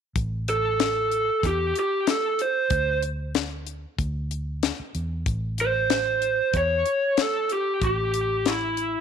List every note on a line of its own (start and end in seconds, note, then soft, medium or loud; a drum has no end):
0.16 1.29 A1 medium
0.16 kick loud
0.16 closed hi-hat medium
0.48 1.46 A4 medium
0.48 closed hi-hat medium
0.80 snare loud
0.80 closed hi-hat medium
1.12 closed hi-hat medium
1.43 1.72 E2 medium
1.43 1.75 G4 medium
1.43 kick medium
1.43 closed hi-hat medium
1.76 2.09 G4 medium
1.76 closed hi-hat medium
2.07 2.38 A4 medium
2.07 snare loud
2.07 closed hi-hat medium
2.39 3.00 C5 medium
2.39 closed hi-hat medium
2.70 3.84 D2 medium
2.70 kick loud
2.70 closed hi-hat medium
3.03 closed hi-hat medium
3.35 snare loud
3.35 closed hi-hat medium
3.67 closed hi-hat medium
3.99 4.70 D2 medium
3.99 kick medium
3.99 closed hi-hat medium
4.31 closed hi-hat medium
4.63 snare loud
4.63 closed hi-hat medium
4.80 muted fingered electric bass stroke soft
4.95 5.23 E2 medium
4.95 closed hi-hat medium
5.26 6.40 A1 medium
5.26 kick loud
5.26 closed hi-hat medium
5.58 6.57 C5 medium
5.58 closed hi-hat medium
5.90 snare loud
5.90 closed hi-hat medium
6.22 closed hi-hat medium
6.53 6.82 E2 medium
6.53 7.22 C#5 loud
6.53 kick medium
6.53 closed hi-hat medium
6.86 closed hi-hat medium
7.17 7.53 A4 medium
7.17 snare loud
7.17 closed hi-hat medium
7.49 7.84 G4 medium
7.49 closed hi-hat medium
7.82 8.95 A1 medium
7.82 8.49 G4 medium
7.82 kick medium
7.82 closed hi-hat medium
8.14 closed hi-hat medium
8.46 9.01 E4 medium
8.46 snare medium
8.46 closed hi-hat medium
8.77 closed hi-hat medium